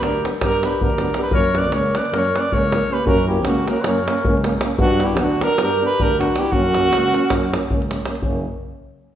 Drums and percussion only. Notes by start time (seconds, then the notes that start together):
0.03 davul high
0.15 davul high
0.25 davul high
0.34 davul high
0.41 davul high, davul low
0.52 davul high
0.63 davul high
0.72 davul high
0.81 davul low
0.90 davul high
0.98 davul high
1.08 davul high
1.14 davul high
1.24 davul high
1.31 davul low
1.44 davul high
1.55 davul high
1.64 davul high
1.72 davul high
1.95 davul high
2.05 davul high
2.14 davul high
2.36 davul high
2.44 davul high
2.52 davul low
2.62 davul high
2.72 davul high
2.81 davul high
3.07 davul low
3.19 davul high
3.37 davul high
3.45 davul high
3.68 davul high
3.76 davul high
3.84 davul high
4.08 davul high
4.18 davul high
4.25 davul low
4.37 davul high
4.44 davul high
4.52 davul high
4.61 davul high
4.78 davul low
4.91 davul high
5.00 davul high
5.17 davul high
5.41 davul high
5.50 davul high
5.58 davul high
5.91 davul high
6.00 davul low
6.10 davul high
6.21 davul high
6.28 davul high
6.36 davul high
6.52 davul low
6.74 davul high
6.83 davul high
6.93 davul high
7.14 davul high
7.23 davul high
7.30 davul high, davul low
7.43 davul high
7.54 davul high
7.63 davul high
7.70 davul low
7.82 davul high
7.91 davul high
7.99 davul high
8.05 davul high
8.15 davul high
8.22 davul low